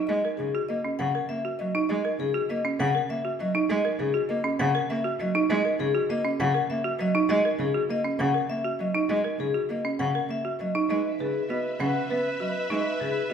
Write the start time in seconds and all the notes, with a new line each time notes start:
Already playing: D#4
0.07 G#3 D#5
0.25 A#4
0.37 C#3 G#4
0.55 F#4
0.69 A#3 D#5
0.85 C#4
0.99 C#3 F#5
1.15 A#4
1.29 A#3 E5
1.45 F#4
1.59 F#3 D#5
1.75 D#4
1.89 G#3 D#5
2.05 A#4
2.19 C#3 G#4
2.34 F#4
2.50 A#3 D#5
2.65 C#4
2.80 C#3 F#5
2.95 A#4
3.09 A#3 E5
3.25 F#4
3.40 F#3 D#5
3.55 D#4
3.70 G#3 D#5
3.85 A#4
3.99 C#3 G#4
4.14 F#4
4.29 A#3 D#5
4.44 C#4
4.59 C#3 F#5
4.75 A#4
4.90 A#3 E5
5.04 F#4
5.20 F#3 D#5
5.35 D#4
5.50 G#3 D#5
5.65 A#4
5.80 C#3 G#4
5.95 F#4
6.10 A#3 D#5
6.25 C#4
6.40 C#3 F#5
6.54 A#4
6.70 A#3 E5
6.84 F#4
6.99 F#3 D#5
7.15 D#4
7.29 G#3 D#5
7.45 A#4
7.59 C#3 G#4
7.74 F#4
7.89 A#3 D#5
8.04 C#4
8.19 C#3 F#5
8.34 A#4
8.49 A#3 E5
8.65 F#4
8.79 F#3 D#5
8.95 D#4
9.09 G#3 D#5
9.24 A#4
9.39 C#3 G#4
9.54 F#4
9.69 A#3 D#5
9.85 C#4
9.99 C#3 F#5
10.15 A#4
10.29 A#3 E5
10.45 F#4
10.59 F#3 D#5
10.75 D#4
10.89 G#3 D#4 B4 D#5 E5
11.20 C#3 G#4 B4
11.49 B3 F#4 B4 D#5
11.80 C#3 C#4 F#5
11.85 B4
12.10 B3 B4 E5
12.16 B4
12.40 F#3 F#4 D#5
12.48 B4
12.70 G#3 D#4 D#5
12.80 B4
13.00 C#3 G#4 B4
13.10 B4
13.30 B3 F#4 D#5